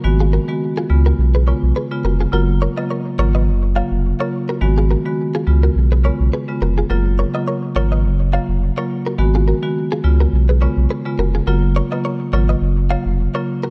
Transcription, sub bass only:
X:1
M:4/4
L:1/16
Q:"Swing 16ths" 1/4=105
K:F#
V:1 name="Sub bass" clef=bass
G,,,3 z3 C,,2 B,,,3 B,,, z2 E,,,2 | F,,,3 z3 G,,,2 F,,,3 E,,,2 z3 | G,,,3 z3 C,,2 B,,,3 B,,, z2 E,,,2 | F,,,3 z3 G,,,2 F,,,3 E,,,2 z3 |
G,,,3 z3 C,,2 B,,,3 B,,, z2 E,,,2 | F,,,3 z3 G,,,2 F,,,3 E,,,2 z3 |]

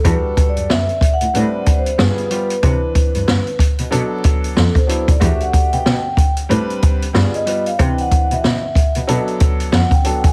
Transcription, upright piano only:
X:1
M:4/4
L:1/8
Q:"Swing 16ths" 1/4=93
K:Em
V:1 name="Upright piano"
[G,DFA]2 z2 [G,CDB]2 [G,B,=F_A] [G,B,FG] | [E,CDB]2 z2 [F,B,DA]2 z [F,B,DE] | [A,DFG]2 z2 [G,CDB]2 [G,B,=F_A] [G,B,FB] | [E,CDB]2 z2 [F,B,DA]2 z [F,B,DA] |]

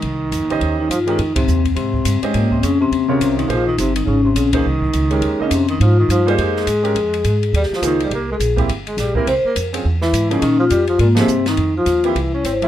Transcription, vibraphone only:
X:1
M:4/4
L:1/16
Q:"Swing" 1/4=208
K:Fm
V:1 name="Vibraphone"
E8- E2 E2 F2 E2- | E2 C4 z2 C6 A,2 | B,2 C2 D2 C4 D2 C2 E2 | F2 E2 C2 E2 D2 C2 D2 E2- |
E8- E2 D2 C2 E2 | F2 E2 F2 G2 A8- | A8 G2 F2 E2 G2 | B2 A2 z6 A2 G2 B2 |
c2 B2 z6 =E4 D3/2 D/2 | E2 F2 G2 F2 B,2 C4 E2- | E2 F4 =E4 d2 c2 =e3/2 z/2 |]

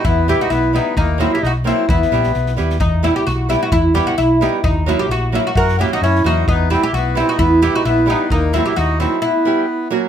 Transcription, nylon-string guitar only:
X:1
M:2/4
L:1/8
Q:"Swing 16ths" 1/4=131
K:none
V:1 name="Nylon-string guitar"
z [G,B,EG] z [G,B,EG] | z [^F,^A,^D^F] z [F,A,DF] | z [G,B,EG] z [G,B,EG] | z [G,B,EG] z [G,B,EG] |
z [G,B,EG] z [G,B,EG] | z [^F,^A,^D^F] z [F,A,DF] | z [^F,^A,^C^F] z [F,A,CF] | z [G,B,EG] z [G,B,EG] |
z [G,B,EG] z [G,B,EG] | z [^F,^A,^D^F] z [F,A,DF] | z [G,B,EG] z [^F,^A,^C^F] |]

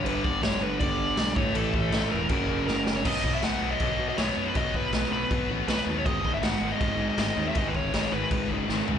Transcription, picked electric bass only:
X:1
M:4/4
L:1/8
Q:1/4=160
K:Bmix
V:1 name="Picked electric bass" clef=bass
=G,,, G,,, G,,, G,,, G,,,2 B,,, A,,, | A,,, A,,, A,,, E,,, F,,, F,,, F,,, F,,, | B,,, B,,, B,,, B,,, B,,, B,, B,,, F,, | B,,, B,,, B,,, B,,, B,,, A,,, B,,, D,, |
G,,, G,,, G,,, G,,, G,,, G,, G,,, D,, | G,,, G,,, G,,, G,,, G,,, F,,, G,,, C,, |]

